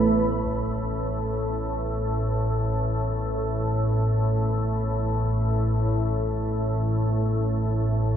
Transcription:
Already playing: synth drone A1 A2, ambient pad A3 E4 B4 B5, singing bowl A4
0.44 synth drone A1 A2, impact

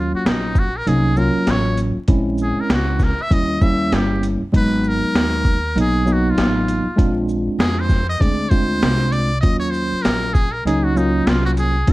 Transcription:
Already playing: upright bass D#2, tine electric piano F#3 A#3 C#4 F4, muted trumpet F4
0.13 muted trumpet F#4, muted upright bass stroke
0.25 upright bass A#1, muted trumpet D#4, snare, closed hi-hat
0.55 muted trumpet F#4, kick, shaker
0.77 muted trumpet A#4
0.86 upright bass C2, tine electric piano F#3 A#3 C#4 D#4, muted trumpet G#4, closed hi-hat
1.16 tine electric piano F#3 A#3 C#4 F4, muted trumpet A#4, shaker
1.35 muted upright bass stroke
1.47 upright bass A1, muted trumpet C#5, snare, closed hi-hat
1.77 closed hi-hat, shaker
1.96 muted upright bass stroke
2.08 upright bass A#1, tine electric piano G#3 C4 C#4 E4, kick, closed hi-hat
2.38 shaker
2.43 muted trumpet G#4
2.58 muted trumpet A#4, muted upright bass stroke
2.70 upright bass C#2, snare, closed hi-hat
2.74 muted trumpet F#4
2.99 kick, snare, shaker
3.04 muted trumpet A#4
3.19 muted trumpet E5, muted upright bass stroke
3.30 upright bass D#2, tine electric piano G3 A#3 C#4 E4, muted trumpet D#5, kick, closed hi-hat
3.61 tine electric piano G3 A#3 C#4 E4, muted trumpet E5, kick, shaker
3.92 upright bass G1, muted trumpet G4, snare, closed hi-hat
4.23 closed hi-hat, shaker
4.42 muted upright bass stroke
4.52 upright bass G#1, tine electric piano F#3 G#3 B3 D#4, kick, closed hi-hat
4.56 muted trumpet B4
4.84 shaker
4.88 muted trumpet A#4
5.02 muted upright bass stroke
5.15 upright bass D#2, snare, closed hi-hat
5.45 kick, shaker
5.76 upright bass B1, tine electric piano F#3 A#3 B3 D#4, closed hi-hat
5.81 muted trumpet G#4
6.05 tine electric piano F#3 A#3 B3 D#4, shaker
6.12 muted trumpet F#4
6.31 muted trumpet F4
6.37 upright bass A1, snare, closed hi-hat
6.68 closed hi-hat, shaker
6.86 muted upright bass stroke
6.96 upright bass A#1, tine electric piano G#3 C4 D4 F4, kick, closed hi-hat
7.29 shaker
7.47 muted upright bass stroke
7.59 upright bass F2, muted trumpet G#4, snare, closed hi-hat
7.80 muted trumpet C5
7.89 kick, snare, shaker
8.09 muted trumpet D#5
8.20 upright bass D2, tine electric piano G#3 C4 D4 G#4, muted trumpet D5, kick, closed hi-hat
8.50 tine electric piano G#3 C4 D4 F4, muted trumpet C5, kick, closed hi-hat, shaker
8.82 upright bass C2, snare, closed hi-hat
9.12 muted trumpet D5, closed hi-hat, shaker
9.40 upright bass D#2, tine electric piano F#3 A#3 C#4 F4, muted trumpet D#5, kick, closed hi-hat
9.59 muted trumpet C#5
9.70 muted trumpet C5, shaker
9.92 muted upright bass stroke
10.02 upright bass A#1, muted trumpet A#4, snare, closed hi-hat
10.33 muted trumpet G#4, kick, shaker
10.52 muted trumpet A#4
10.65 upright bass C#2, tine electric piano F#3 A#3 C#4 D#4, muted trumpet G#4, closed hi-hat
10.84 muted trumpet F#4
10.95 tine electric piano F#3 A#3 C#4 F4, muted trumpet D#4, shaker
11.27 upright bass C2, muted trumpet F4, snare, closed hi-hat
11.46 muted trumpet F#4
11.57 muted trumpet G#4, closed hi-hat, shaker
11.87 upright bass A#1, tine electric piano G#3 B3 D4 F4, kick, closed hi-hat

